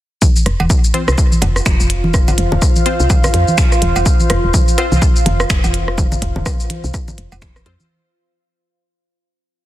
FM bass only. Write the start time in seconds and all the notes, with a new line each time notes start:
0.46 F1
0.60 D#1
1.08 C2
1.42 F1
1.66 F1
1.80 F1
2.38 F1
2.52 D#1
3.00 C2
3.34 F2
3.82 D#1
3.96 F1
4.30 F1
4.44 D#1
4.92 C2
5.26 F1
5.50 F1
5.64 F1
6.22 F1
6.36 D#1
6.84 C2
7.18 F1
7.32 F1
7.66 F2